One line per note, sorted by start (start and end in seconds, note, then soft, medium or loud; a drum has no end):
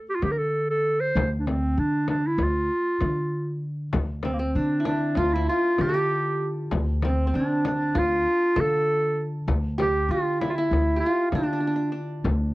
0.10 0.17 G4 medium
0.15 0.25 F4 medium
0.22 1.11 D3 medium
0.22 0.33 G4 medium
0.22 frame drum medium
0.31 0.40 A#4 medium
0.38 0.69 A4 medium
0.70 1.02 A4 medium
1.01 1.31 C5 medium
1.16 1.73 D2 medium
1.16 frame drum medium
1.39 1.48 D4 medium
1.47 1.80 C4 medium
1.47 frame drum medium
1.78 2.35 D3 medium
1.78 2.09 D4 medium
2.08 2.29 D4 medium
2.08 frame drum medium
2.27 2.44 E4 medium
2.38 2.67 D2 medium
2.38 frame drum medium
2.43 3.65 F4 medium
3.01 3.90 D3 medium
3.01 frame drum medium
3.93 4.52 D2 medium
3.93 frame drum medium
4.23 4.39 C4 medium
4.23 4.35 C4 medium
4.23 frame drum medium
4.34 4.41 A#3 medium
4.39 5.99 C4 medium
4.39 4.57 C4 medium
4.55 5.13 D3 medium
4.55 4.86 D4 medium
4.55 4.85 D4 medium
4.80 5.23 E4 soft
4.85 6.35 D4 medium
4.85 5.19 D4 medium
4.85 frame drum medium
5.15 5.46 D2 medium
5.15 5.42 F4 medium
5.15 5.35 F4 medium
5.15 frame drum medium
5.33 5.48 E4 medium
5.33 5.56 E4 medium
5.49 5.83 F4 medium
5.49 6.84 F4 medium
5.78 6.68 D3 medium
5.78 5.93 G4 medium
5.78 6.50 G4 medium
5.78 frame drum medium
5.89 7.06 A4 medium
5.94 7.19 G4 medium
6.71 7.30 D2 medium
6.71 frame drum medium
7.02 7.27 C4 medium
7.02 7.37 C4 medium
7.02 frame drum medium
7.27 8.87 C4 medium
7.34 7.91 D3 medium
7.34 7.64 D4 medium
7.34 7.65 D4 medium
7.65 9.14 D4 medium
7.65 8.00 D4 medium
7.65 frame drum medium
7.95 8.24 D2 medium
7.95 9.30 F4 medium
7.95 8.62 F4 loud
7.95 frame drum medium
8.56 9.45 D3 medium
8.56 9.73 A4 medium
8.56 frame drum medium
8.60 9.28 A4 medium
9.48 10.06 D2 medium
9.48 frame drum medium
9.78 10.96 G4 medium
9.78 10.12 G4 medium
9.78 frame drum medium
10.09 10.67 D3 medium
10.09 10.47 F4 medium
10.09 10.41 F4 medium
10.39 10.51 E4 medium
10.39 10.58 E4 medium
10.39 frame drum medium
10.50 10.99 E4 medium
10.50 10.54 F4 medium
10.58 11.12 E4 medium
10.71 11.00 D2 medium
10.71 frame drum medium
10.96 11.30 F4 medium
10.96 12.22 G4 medium
11.06 12.41 F4 medium
11.31 12.22 D3 medium
11.31 11.98 D4 medium
11.31 frame drum medium
11.35 11.43 D4 medium
11.43 11.52 D4 soft
11.53 11.60 D4 medium
11.60 11.67 D4 soft
11.67 11.75 D4 medium
11.76 11.92 D4 soft
11.92 12.54 D4 soft
12.24 12.54 D2 medium
12.24 frame drum medium